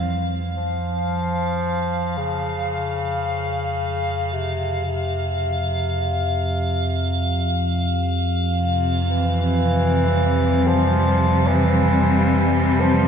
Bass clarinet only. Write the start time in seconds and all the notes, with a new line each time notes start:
0.56 F3
2.18 C#3
4.33 C3
4.85 C3
9.08 E3
10.67 F3
11.47 E3
12.80 F3